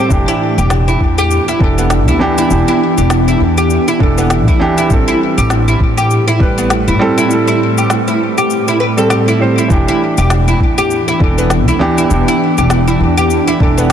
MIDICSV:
0, 0, Header, 1, 6, 480
1, 0, Start_track
1, 0, Key_signature, 1, "minor"
1, 0, Tempo, 600000
1, 83, Time_signature, 4, 2, 24, 8
1, 11139, End_track
2, 0, Start_track
2, 0, Title_t, "Oud"
2, 0, Program_c, 0, 24
2, 224, Note_on_c, 0, 64, 99
2, 318, Note_off_c, 0, 64, 0
2, 464, Note_on_c, 0, 67, 65
2, 558, Note_off_c, 0, 67, 0
2, 702, Note_on_c, 0, 64, 68
2, 798, Note_off_c, 0, 64, 0
2, 946, Note_on_c, 0, 67, 97
2, 1170, Note_off_c, 0, 67, 0
2, 1184, Note_on_c, 0, 64, 92
2, 1279, Note_off_c, 0, 64, 0
2, 1424, Note_on_c, 0, 59, 71
2, 1518, Note_off_c, 0, 59, 0
2, 1663, Note_on_c, 0, 64, 70
2, 1889, Note_off_c, 0, 64, 0
2, 1903, Note_on_c, 0, 64, 95
2, 2129, Note_off_c, 0, 64, 0
2, 2144, Note_on_c, 0, 64, 97
2, 2239, Note_off_c, 0, 64, 0
2, 2381, Note_on_c, 0, 67, 66
2, 2477, Note_off_c, 0, 67, 0
2, 2623, Note_on_c, 0, 64, 76
2, 2718, Note_off_c, 0, 64, 0
2, 2861, Note_on_c, 0, 67, 91
2, 3088, Note_off_c, 0, 67, 0
2, 3103, Note_on_c, 0, 64, 92
2, 3198, Note_off_c, 0, 64, 0
2, 3341, Note_on_c, 0, 59, 72
2, 3437, Note_off_c, 0, 59, 0
2, 3584, Note_on_c, 0, 64, 68
2, 3810, Note_off_c, 0, 64, 0
2, 3821, Note_on_c, 0, 64, 95
2, 3922, Note_off_c, 0, 64, 0
2, 4062, Note_on_c, 0, 64, 94
2, 4157, Note_off_c, 0, 64, 0
2, 4301, Note_on_c, 0, 67, 73
2, 4397, Note_off_c, 0, 67, 0
2, 4543, Note_on_c, 0, 64, 77
2, 4638, Note_off_c, 0, 64, 0
2, 4780, Note_on_c, 0, 67, 101
2, 5008, Note_off_c, 0, 67, 0
2, 5021, Note_on_c, 0, 64, 99
2, 5117, Note_off_c, 0, 64, 0
2, 5262, Note_on_c, 0, 59, 74
2, 5358, Note_off_c, 0, 59, 0
2, 5502, Note_on_c, 0, 64, 69
2, 5729, Note_off_c, 0, 64, 0
2, 5742, Note_on_c, 0, 64, 97
2, 5968, Note_off_c, 0, 64, 0
2, 5980, Note_on_c, 0, 64, 103
2, 6077, Note_off_c, 0, 64, 0
2, 6222, Note_on_c, 0, 67, 68
2, 6318, Note_off_c, 0, 67, 0
2, 6462, Note_on_c, 0, 64, 72
2, 6557, Note_off_c, 0, 64, 0
2, 6703, Note_on_c, 0, 67, 95
2, 6929, Note_off_c, 0, 67, 0
2, 6944, Note_on_c, 0, 64, 90
2, 7037, Note_off_c, 0, 64, 0
2, 7040, Note_on_c, 0, 71, 67
2, 7122, Note_off_c, 0, 71, 0
2, 7181, Note_on_c, 0, 69, 72
2, 7277, Note_off_c, 0, 69, 0
2, 7281, Note_on_c, 0, 67, 76
2, 7415, Note_off_c, 0, 67, 0
2, 7423, Note_on_c, 0, 64, 88
2, 7513, Note_off_c, 0, 64, 0
2, 7664, Note_on_c, 0, 64, 72
2, 7754, Note_off_c, 0, 64, 0
2, 7907, Note_on_c, 0, 64, 101
2, 8000, Note_off_c, 0, 64, 0
2, 8143, Note_on_c, 0, 67, 71
2, 8238, Note_off_c, 0, 67, 0
2, 8382, Note_on_c, 0, 64, 73
2, 8478, Note_off_c, 0, 64, 0
2, 8623, Note_on_c, 0, 67, 100
2, 8849, Note_off_c, 0, 67, 0
2, 8863, Note_on_c, 0, 64, 90
2, 8958, Note_off_c, 0, 64, 0
2, 9105, Note_on_c, 0, 59, 75
2, 9199, Note_off_c, 0, 59, 0
2, 9343, Note_on_c, 0, 64, 70
2, 9569, Note_off_c, 0, 64, 0
2, 9584, Note_on_c, 0, 64, 91
2, 9810, Note_off_c, 0, 64, 0
2, 9825, Note_on_c, 0, 64, 104
2, 9919, Note_off_c, 0, 64, 0
2, 10063, Note_on_c, 0, 67, 67
2, 10158, Note_off_c, 0, 67, 0
2, 10300, Note_on_c, 0, 64, 75
2, 10397, Note_off_c, 0, 64, 0
2, 10540, Note_on_c, 0, 67, 97
2, 10768, Note_off_c, 0, 67, 0
2, 10780, Note_on_c, 0, 64, 96
2, 10876, Note_off_c, 0, 64, 0
2, 11020, Note_on_c, 0, 59, 73
2, 11117, Note_off_c, 0, 59, 0
2, 11139, End_track
3, 0, Start_track
3, 0, Title_t, "Felt piano"
3, 0, Program_c, 1, 0
3, 0, Control_c, 1, 64, 127
3, 0, Note_on_c, 1, 55, 74
3, 0, Note_on_c, 1, 60, 70
3, 0, Note_on_c, 1, 72, 86
3, 67, Note_on_c, 1, 52, 79
3, 84, Note_on_c, 1, 62, 73
3, 94, Control_c, 1, 64, 0
3, 95, Note_off_c, 1, 55, 0
3, 96, Note_off_c, 1, 72, 0
3, 99, Note_off_c, 1, 60, 0
3, 100, Note_on_c, 1, 67, 88
3, 250, Control_c, 1, 64, 127
3, 1251, Note_off_c, 1, 52, 0
3, 1260, Note_off_c, 1, 62, 0
3, 1267, Note_off_c, 1, 67, 0
3, 1275, Note_on_c, 1, 52, 71
3, 1283, Note_on_c, 1, 62, 66
3, 1291, Note_on_c, 1, 69, 81
3, 1735, Note_off_c, 1, 52, 0
3, 1739, Note_off_c, 1, 62, 0
3, 1743, Note_off_c, 1, 69, 0
3, 1753, Note_on_c, 1, 52, 94
3, 1761, Note_on_c, 1, 62, 90
3, 1769, Note_on_c, 1, 67, 110
3, 1974, Note_off_c, 1, 52, 0
3, 1978, Note_off_c, 1, 62, 0
3, 1982, Note_off_c, 1, 67, 0
3, 1989, Note_on_c, 1, 52, 83
3, 2004, Note_on_c, 1, 62, 75
3, 2019, Note_on_c, 1, 67, 88
3, 3172, Note_off_c, 1, 52, 0
3, 3180, Note_off_c, 1, 62, 0
3, 3187, Note_off_c, 1, 67, 0
3, 3192, Note_on_c, 1, 52, 76
3, 3200, Note_on_c, 1, 62, 66
3, 3207, Note_on_c, 1, 69, 85
3, 3654, Note_off_c, 1, 52, 0
3, 3658, Note_off_c, 1, 62, 0
3, 3661, Note_off_c, 1, 69, 0
3, 3675, Note_on_c, 1, 52, 99
3, 3682, Note_on_c, 1, 62, 95
3, 3691, Note_on_c, 1, 67, 111
3, 3895, Note_off_c, 1, 52, 0
3, 3899, Note_off_c, 1, 62, 0
3, 3903, Note_off_c, 1, 67, 0
3, 3904, Note_on_c, 1, 55, 79
3, 3921, Note_on_c, 1, 60, 77
3, 3934, Control_c, 1, 64, 0
3, 3936, Note_on_c, 1, 69, 93
3, 4053, Control_c, 1, 64, 127
3, 5090, Note_off_c, 1, 55, 0
3, 5098, Note_off_c, 1, 60, 0
3, 5106, Note_off_c, 1, 69, 0
3, 5116, Note_on_c, 1, 55, 75
3, 5130, Note_on_c, 1, 71, 85
3, 5575, Note_off_c, 1, 55, 0
3, 5582, Note_off_c, 1, 71, 0
3, 5594, Note_on_c, 1, 55, 101
3, 5603, Note_on_c, 1, 60, 89
3, 5611, Note_on_c, 1, 69, 110
3, 5814, Note_off_c, 1, 55, 0
3, 5819, Note_off_c, 1, 60, 0
3, 5823, Note_off_c, 1, 69, 0
3, 5827, Note_on_c, 1, 55, 82
3, 5861, Note_on_c, 1, 69, 84
3, 7011, Note_off_c, 1, 55, 0
3, 7028, Note_off_c, 1, 69, 0
3, 7176, Note_on_c, 1, 55, 83
3, 7183, Note_on_c, 1, 60, 75
3, 7496, Note_off_c, 1, 55, 0
3, 7499, Note_off_c, 1, 60, 0
3, 7516, Note_on_c, 1, 55, 76
3, 7524, Note_on_c, 1, 60, 68
3, 7532, Note_on_c, 1, 72, 83
3, 7736, Note_off_c, 1, 55, 0
3, 7740, Note_off_c, 1, 60, 0
3, 7744, Note_off_c, 1, 72, 0
3, 7745, Note_on_c, 1, 52, 83
3, 7762, Note_on_c, 1, 62, 76
3, 7772, Control_c, 1, 64, 0
3, 7778, Note_on_c, 1, 67, 89
3, 7932, Control_c, 1, 64, 127
3, 8930, Note_off_c, 1, 52, 0
3, 8938, Note_off_c, 1, 62, 0
3, 8946, Note_off_c, 1, 67, 0
3, 8955, Note_on_c, 1, 52, 71
3, 8963, Note_on_c, 1, 62, 64
3, 8970, Note_on_c, 1, 69, 83
3, 9415, Note_off_c, 1, 52, 0
3, 9419, Note_off_c, 1, 62, 0
3, 9423, Note_off_c, 1, 69, 0
3, 9433, Note_on_c, 1, 52, 103
3, 9440, Note_on_c, 1, 62, 94
3, 9447, Note_on_c, 1, 67, 117
3, 9653, Note_off_c, 1, 52, 0
3, 9658, Note_off_c, 1, 62, 0
3, 9661, Note_off_c, 1, 67, 0
3, 9665, Note_on_c, 1, 52, 82
3, 9682, Note_on_c, 1, 62, 75
3, 9699, Note_on_c, 1, 67, 88
3, 10850, Note_off_c, 1, 52, 0
3, 10859, Note_off_c, 1, 62, 0
3, 10867, Note_off_c, 1, 67, 0
3, 10875, Note_on_c, 1, 52, 75
3, 10882, Note_on_c, 1, 62, 70
3, 10890, Note_on_c, 1, 69, 76
3, 11139, Note_off_c, 1, 52, 0
3, 11139, Note_off_c, 1, 62, 0
3, 11139, Note_off_c, 1, 69, 0
3, 11139, End_track
4, 0, Start_track
4, 0, Title_t, "Ambient pad"
4, 0, Program_c, 2, 92
4, 0, Note_on_c, 2, 45, 80
4, 0, Note_on_c, 2, 57, 86
4, 0, Note_on_c, 2, 67, 69
4, 86, Note_off_c, 2, 45, 0
4, 86, Note_off_c, 2, 57, 0
4, 86, Note_on_c, 2, 52, 79
4, 226, Note_on_c, 2, 62, 70
4, 360, Note_on_c, 2, 59, 73
4, 3923, Note_on_c, 2, 45, 94
4, 3924, Note_off_c, 2, 59, 0
4, 3925, Note_off_c, 2, 52, 0
4, 4025, Note_on_c, 2, 57, 80
4, 4972, Note_off_c, 2, 62, 0
4, 7762, Note_off_c, 2, 57, 0
4, 7763, Note_off_c, 2, 45, 0
4, 7765, Note_off_c, 2, 67, 0
4, 7766, Note_on_c, 2, 52, 69
4, 8094, Note_on_c, 2, 62, 97
4, 8112, Note_on_c, 2, 59, 102
4, 8782, Note_on_c, 2, 67, 83
4, 11139, Note_off_c, 2, 52, 0
4, 11139, Note_off_c, 2, 59, 0
4, 11139, Note_off_c, 2, 62, 0
4, 11139, Note_off_c, 2, 67, 0
4, 11139, End_track
5, 0, Start_track
5, 0, Title_t, "Upright bass"
5, 0, Program_c, 3, 32
5, 83, Note_on_c, 3, 28, 95
5, 168, Note_off_c, 3, 28, 0
5, 463, Note_on_c, 3, 28, 100
5, 740, Note_off_c, 3, 28, 0
5, 804, Note_on_c, 3, 40, 75
5, 1095, Note_off_c, 3, 40, 0
5, 1283, Note_on_c, 3, 28, 82
5, 1663, Note_off_c, 3, 28, 0
5, 1663, Note_on_c, 3, 38, 73
5, 1724, Note_off_c, 3, 38, 0
5, 2004, Note_on_c, 3, 28, 90
5, 2088, Note_off_c, 3, 28, 0
5, 2382, Note_on_c, 3, 28, 100
5, 2659, Note_off_c, 3, 28, 0
5, 2723, Note_on_c, 3, 40, 79
5, 3014, Note_off_c, 3, 40, 0
5, 3203, Note_on_c, 3, 28, 91
5, 3581, Note_off_c, 3, 28, 0
5, 3581, Note_on_c, 3, 38, 67
5, 3643, Note_off_c, 3, 38, 0
5, 3923, Note_on_c, 3, 33, 100
5, 4008, Note_off_c, 3, 33, 0
5, 4302, Note_on_c, 3, 33, 102
5, 4579, Note_off_c, 3, 33, 0
5, 4642, Note_on_c, 3, 45, 77
5, 4934, Note_off_c, 3, 45, 0
5, 5123, Note_on_c, 3, 33, 84
5, 5499, Note_on_c, 3, 31, 73
5, 5511, Note_off_c, 3, 33, 0
5, 5562, Note_off_c, 3, 31, 0
5, 7763, Note_on_c, 3, 28, 91
5, 7848, Note_off_c, 3, 28, 0
5, 8142, Note_on_c, 3, 28, 101
5, 8419, Note_off_c, 3, 28, 0
5, 8482, Note_on_c, 3, 40, 80
5, 8774, Note_off_c, 3, 40, 0
5, 8963, Note_on_c, 3, 28, 83
5, 9342, Note_off_c, 3, 28, 0
5, 9342, Note_on_c, 3, 38, 67
5, 9403, Note_off_c, 3, 38, 0
5, 9685, Note_on_c, 3, 28, 99
5, 9769, Note_off_c, 3, 28, 0
5, 10064, Note_on_c, 3, 28, 100
5, 10340, Note_off_c, 3, 28, 0
5, 10403, Note_on_c, 3, 40, 83
5, 10695, Note_off_c, 3, 40, 0
5, 10882, Note_on_c, 3, 28, 82
5, 11139, Note_off_c, 3, 28, 0
5, 11139, End_track
6, 0, Start_track
6, 0, Title_t, "Drums"
6, 84, Note_on_c, 9, 36, 112
6, 87, Note_on_c, 9, 82, 55
6, 164, Note_off_c, 9, 36, 0
6, 167, Note_off_c, 9, 82, 0
6, 227, Note_on_c, 9, 82, 34
6, 307, Note_off_c, 9, 82, 0
6, 468, Note_on_c, 9, 82, 60
6, 548, Note_off_c, 9, 82, 0
6, 562, Note_on_c, 9, 38, 89
6, 566, Note_on_c, 9, 82, 56
6, 642, Note_off_c, 9, 38, 0
6, 646, Note_off_c, 9, 82, 0
6, 707, Note_on_c, 9, 82, 30
6, 787, Note_off_c, 9, 82, 0
6, 804, Note_on_c, 9, 36, 53
6, 884, Note_off_c, 9, 36, 0
6, 947, Note_on_c, 9, 82, 63
6, 1027, Note_off_c, 9, 82, 0
6, 1047, Note_on_c, 9, 82, 48
6, 1127, Note_off_c, 9, 82, 0
6, 1189, Note_on_c, 9, 82, 32
6, 1269, Note_off_c, 9, 82, 0
6, 1284, Note_on_c, 9, 36, 94
6, 1364, Note_off_c, 9, 36, 0
6, 1427, Note_on_c, 9, 82, 60
6, 1507, Note_off_c, 9, 82, 0
6, 1521, Note_on_c, 9, 38, 89
6, 1525, Note_on_c, 9, 82, 51
6, 1601, Note_off_c, 9, 38, 0
6, 1605, Note_off_c, 9, 82, 0
6, 1666, Note_on_c, 9, 82, 33
6, 1746, Note_off_c, 9, 82, 0
6, 1905, Note_on_c, 9, 82, 61
6, 1985, Note_off_c, 9, 82, 0
6, 2006, Note_on_c, 9, 82, 51
6, 2086, Note_off_c, 9, 82, 0
6, 2144, Note_on_c, 9, 82, 30
6, 2224, Note_off_c, 9, 82, 0
6, 2384, Note_on_c, 9, 82, 60
6, 2464, Note_off_c, 9, 82, 0
6, 2480, Note_on_c, 9, 38, 91
6, 2484, Note_on_c, 9, 82, 51
6, 2560, Note_off_c, 9, 38, 0
6, 2564, Note_off_c, 9, 82, 0
6, 2625, Note_on_c, 9, 82, 30
6, 2705, Note_off_c, 9, 82, 0
6, 2863, Note_on_c, 9, 82, 63
6, 2943, Note_off_c, 9, 82, 0
6, 2962, Note_on_c, 9, 82, 46
6, 3042, Note_off_c, 9, 82, 0
6, 3103, Note_on_c, 9, 82, 33
6, 3183, Note_off_c, 9, 82, 0
6, 3203, Note_on_c, 9, 36, 92
6, 3283, Note_off_c, 9, 36, 0
6, 3344, Note_on_c, 9, 82, 64
6, 3424, Note_off_c, 9, 82, 0
6, 3441, Note_on_c, 9, 38, 94
6, 3445, Note_on_c, 9, 82, 49
6, 3521, Note_off_c, 9, 38, 0
6, 3525, Note_off_c, 9, 82, 0
6, 3582, Note_on_c, 9, 36, 107
6, 3584, Note_on_c, 9, 82, 32
6, 3662, Note_off_c, 9, 36, 0
6, 3664, Note_off_c, 9, 82, 0
6, 3823, Note_on_c, 9, 82, 56
6, 3903, Note_off_c, 9, 82, 0
6, 3922, Note_on_c, 9, 36, 105
6, 3923, Note_on_c, 9, 82, 52
6, 4002, Note_off_c, 9, 36, 0
6, 4003, Note_off_c, 9, 82, 0
6, 4066, Note_on_c, 9, 82, 28
6, 4146, Note_off_c, 9, 82, 0
6, 4306, Note_on_c, 9, 82, 59
6, 4386, Note_off_c, 9, 82, 0
6, 4401, Note_on_c, 9, 38, 88
6, 4405, Note_on_c, 9, 82, 50
6, 4481, Note_off_c, 9, 38, 0
6, 4485, Note_off_c, 9, 82, 0
6, 4546, Note_on_c, 9, 82, 30
6, 4626, Note_off_c, 9, 82, 0
6, 4643, Note_on_c, 9, 36, 52
6, 4723, Note_off_c, 9, 36, 0
6, 4784, Note_on_c, 9, 82, 57
6, 4864, Note_off_c, 9, 82, 0
6, 4885, Note_on_c, 9, 82, 49
6, 4965, Note_off_c, 9, 82, 0
6, 5027, Note_on_c, 9, 82, 31
6, 5107, Note_off_c, 9, 82, 0
6, 5123, Note_on_c, 9, 36, 87
6, 5203, Note_off_c, 9, 36, 0
6, 5266, Note_on_c, 9, 82, 60
6, 5346, Note_off_c, 9, 82, 0
6, 5362, Note_on_c, 9, 38, 84
6, 5366, Note_on_c, 9, 82, 48
6, 5442, Note_off_c, 9, 38, 0
6, 5446, Note_off_c, 9, 82, 0
6, 5504, Note_on_c, 9, 82, 30
6, 5584, Note_off_c, 9, 82, 0
6, 5747, Note_on_c, 9, 82, 59
6, 5827, Note_off_c, 9, 82, 0
6, 5845, Note_on_c, 9, 82, 54
6, 5925, Note_off_c, 9, 82, 0
6, 5985, Note_on_c, 9, 82, 30
6, 6065, Note_off_c, 9, 82, 0
6, 6224, Note_on_c, 9, 82, 59
6, 6304, Note_off_c, 9, 82, 0
6, 6320, Note_on_c, 9, 38, 96
6, 6324, Note_on_c, 9, 82, 53
6, 6400, Note_off_c, 9, 38, 0
6, 6404, Note_off_c, 9, 82, 0
6, 6462, Note_on_c, 9, 82, 29
6, 6542, Note_off_c, 9, 82, 0
6, 6704, Note_on_c, 9, 82, 60
6, 6784, Note_off_c, 9, 82, 0
6, 6803, Note_on_c, 9, 82, 49
6, 6883, Note_off_c, 9, 82, 0
6, 6943, Note_on_c, 9, 82, 32
6, 7023, Note_off_c, 9, 82, 0
6, 7184, Note_on_c, 9, 82, 57
6, 7264, Note_off_c, 9, 82, 0
6, 7281, Note_on_c, 9, 38, 96
6, 7285, Note_on_c, 9, 82, 47
6, 7361, Note_off_c, 9, 38, 0
6, 7365, Note_off_c, 9, 82, 0
6, 7426, Note_on_c, 9, 82, 31
6, 7506, Note_off_c, 9, 82, 0
6, 7667, Note_on_c, 9, 82, 58
6, 7747, Note_off_c, 9, 82, 0
6, 7763, Note_on_c, 9, 36, 120
6, 7765, Note_on_c, 9, 82, 56
6, 7843, Note_off_c, 9, 36, 0
6, 7845, Note_off_c, 9, 82, 0
6, 7906, Note_on_c, 9, 82, 30
6, 7986, Note_off_c, 9, 82, 0
6, 8143, Note_on_c, 9, 82, 64
6, 8223, Note_off_c, 9, 82, 0
6, 8242, Note_on_c, 9, 38, 107
6, 8246, Note_on_c, 9, 82, 53
6, 8322, Note_off_c, 9, 38, 0
6, 8326, Note_off_c, 9, 82, 0
6, 8385, Note_on_c, 9, 82, 32
6, 8465, Note_off_c, 9, 82, 0
6, 8483, Note_on_c, 9, 36, 53
6, 8563, Note_off_c, 9, 36, 0
6, 8625, Note_on_c, 9, 82, 59
6, 8705, Note_off_c, 9, 82, 0
6, 8726, Note_on_c, 9, 82, 50
6, 8806, Note_off_c, 9, 82, 0
6, 8866, Note_on_c, 9, 82, 32
6, 8946, Note_off_c, 9, 82, 0
6, 8963, Note_on_c, 9, 36, 101
6, 9043, Note_off_c, 9, 36, 0
6, 9106, Note_on_c, 9, 82, 63
6, 9186, Note_off_c, 9, 82, 0
6, 9202, Note_on_c, 9, 38, 97
6, 9206, Note_on_c, 9, 82, 52
6, 9282, Note_off_c, 9, 38, 0
6, 9286, Note_off_c, 9, 82, 0
6, 9346, Note_on_c, 9, 82, 33
6, 9426, Note_off_c, 9, 82, 0
6, 9585, Note_on_c, 9, 82, 66
6, 9665, Note_off_c, 9, 82, 0
6, 9685, Note_on_c, 9, 82, 57
6, 9765, Note_off_c, 9, 82, 0
6, 9825, Note_on_c, 9, 82, 32
6, 9905, Note_off_c, 9, 82, 0
6, 10064, Note_on_c, 9, 82, 61
6, 10144, Note_off_c, 9, 82, 0
6, 10160, Note_on_c, 9, 38, 104
6, 10164, Note_on_c, 9, 82, 59
6, 10240, Note_off_c, 9, 38, 0
6, 10244, Note_off_c, 9, 82, 0
6, 10304, Note_on_c, 9, 82, 33
6, 10384, Note_off_c, 9, 82, 0
6, 10544, Note_on_c, 9, 82, 64
6, 10624, Note_off_c, 9, 82, 0
6, 10644, Note_on_c, 9, 82, 53
6, 10724, Note_off_c, 9, 82, 0
6, 10784, Note_on_c, 9, 82, 35
6, 10864, Note_off_c, 9, 82, 0
6, 10883, Note_on_c, 9, 36, 96
6, 10963, Note_off_c, 9, 36, 0
6, 11024, Note_on_c, 9, 82, 65
6, 11104, Note_off_c, 9, 82, 0
6, 11139, End_track
0, 0, End_of_file